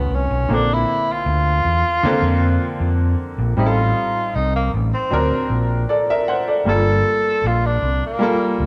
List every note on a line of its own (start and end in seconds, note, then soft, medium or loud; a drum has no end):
0.00 0.22 D#3 medium
0.00 0.22 A3 medium
0.00 0.16 B3 medium
0.00 0.23 C#4 medium
0.00 0.23 F4 medium
0.11 0.27 C2 medium
0.15 0.56 C#4 medium
0.31 0.47 B1 medium
0.49 0.82 A#1 medium
0.49 1.76 D3 medium
0.49 1.77 A#3 medium
0.49 1.77 C4 medium
0.53 0.75 D4 medium
0.53 1.78 A4 medium
0.73 1.14 E4 medium
1.12 3.03 F4 loud
1.26 1.59 D2 medium
1.65 1.81 E2 medium
2.03 3.31 D3 medium
2.03 3.31 A#3 medium
2.03 3.32 C4 medium
2.03 3.32 A4 medium
2.03 muted fingered electric bass stroke soft
2.22 2.55 F2 medium
2.80 3.13 F2 medium
3.38 3.55 A#1 medium
3.57 3.90 A1 medium
3.57 4.85 G3 medium
3.57 4.85 C4 medium
3.57 4.86 D#4 medium
3.57 4.37 F4 loud
3.57 3.66 G4 medium
3.66 4.89 A4 medium
4.36 4.68 C2 medium
4.36 4.55 D#4 medium
4.56 4.72 A#3 medium
4.74 4.90 A1 loud
4.94 5.67 C4 medium
5.10 5.29 D2 loud
5.10 6.39 F#3 medium
5.10 6.39 C4 medium
5.10 6.40 D4 medium
5.10 5.90 A#4 medium
5.31 muted fingered electric bass stroke soft
5.50 5.83 A#1 medium
5.89 6.08 A4 medium
5.89 6.08 D5 medium
6.10 6.28 A#4 medium
6.10 6.28 E5 medium
6.28 6.47 C5 medium
6.28 6.47 F#5 medium
6.48 6.67 A4 medium
6.48 6.85 D5 medium
6.65 6.99 G1 loud
6.65 7.93 G3 medium
6.65 7.94 A#3 medium
6.65 7.94 F4 medium
6.65 7.48 A4 loud
6.65 7.95 A4 medium
7.44 7.77 A#1 medium
7.44 7.68 F4 medium
7.66 8.04 D4 medium
7.82 7.99 C2 medium
8.06 8.66 A#3 medium
8.19 8.66 G3 medium
8.19 8.66 A#3 medium
8.19 8.66 F4 medium
8.19 8.66 A4 medium
8.60 8.66 D2 medium